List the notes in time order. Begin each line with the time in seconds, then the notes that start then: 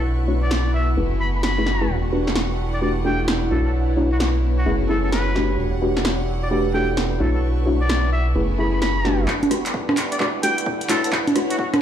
Already playing: B1 A3 B3 D4 E4 F#4 B4 C#5 F#5 C#6
0.28 A3 D4 E4 F#4 C#5
0.35 F#4 C#6
0.43 D5
0.51 snare
0.74 E5
0.97 F#1 A3 B3 C#4 E4 G#4 B4
1.20 B5
1.35 B5
1.43 B5, snare
1.58 A3 C#4 E4 G#4 B4
1.66 snare
1.81 A3 C#4 E4 G#4 B4
1.89 E1 G3 D4 E4 F#5
2.12 A3 D4 F#4 G4 B4
2.27 snare
2.36 snare
2.63 B4 F#5
2.74 D5
2.82 A3 D4 F#4 G4 B4 D5
3.05 A3 D4 F#4 G4 A4 G5
3.28 snare
3.51 B1 A3 B3 D4 E4 F#4 A4 C#5
3.66 A4
3.97 A3 D4 E4 F#4 C#5
4.04 F#4 C#5
4.12 F#4
4.20 F#4, snare
4.58 F#4
4.66 F#1 A3 B3 C#4 E4 G#4 B4
4.89 A3 C#4 E4 G#4 A4 B4
5.04 A4
5.12 B4, snare
5.35 A3 D4 F#4 G4 B4, snare
5.59 E1 G3 D4 E4 F#5
5.82 A3 D4 F#4 G4 B4
5.97 snare
6.05 B4, snare
6.32 F#5
6.43 D5
6.51 A3 D4 F#4 G4 B4 D5
6.74 A3 D4 F#4 G4 A4 G5
6.97 snare
7.20 B1 A3 B3 D4 E4 F#4 A4 C#5 C#6
7.35 A4
7.66 A3 D4 E4 F#4 C#5 C#6
7.81 D5
7.89 snare
8.12 E5
8.35 F#1 A3 B3 C#4 E4 G#4 B4
8.59 A3 C#4 E4 G#4 B4 B5
8.74 B5
8.82 B5, snare
9.05 A3 D4 F#4 G4 B4, snare
9.28 G3 A3 D4 E4 B4 F#5, kick, clap
9.43 closed hi-hat, high conga
9.51 A3 D4 F#4 G4 B4, cross-stick, open hi-hat
9.66 clap, closed hi-hat
9.74 kick
9.84 F#5
9.89 cross-stick, high conga
9.94 B4, clap, open hi-hat
10.12 D5, closed hi-hat
10.20 A3 D4 F#4 G4 B4 D5, kick, clap
10.43 A3 D4 F#4 G4 A4 G5, open hi-hat
10.58 closed hi-hat
10.66 kick
10.81 closed hi-hat
10.89 A3 B3 D4 E4 F#4 A4 C#5, clap, open hi-hat
11.04 A4, closed hi-hat
11.12 kick, clap
11.27 open hi-hat, high conga
11.36 A3 D4 E4 F#4 C#5 F#5, cross-stick, open hi-hat
11.43 C#5
11.50 F#4, closed hi-hat
11.59 F#4, kick
11.74 cross-stick, closed hi-hat, high conga